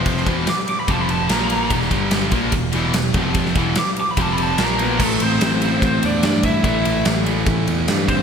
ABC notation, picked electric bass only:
X:1
M:4/4
L:1/8
Q:1/4=146
K:Ador
V:1 name="Picked electric bass" clef=bass
=F,,, E,,, z2 F,,,2 ^A,,,2 | E,,, G,,,2 ^A,,, E,,, E,,, E,,, =F,,,- | =F,,, E,,, z2 F,,,2 ^A,,,2 | A,,, A,,, A,,,2 A,,, E,, G,,2 |
A,,, A,,, A,,,2 A,,, E,, G,,2 |]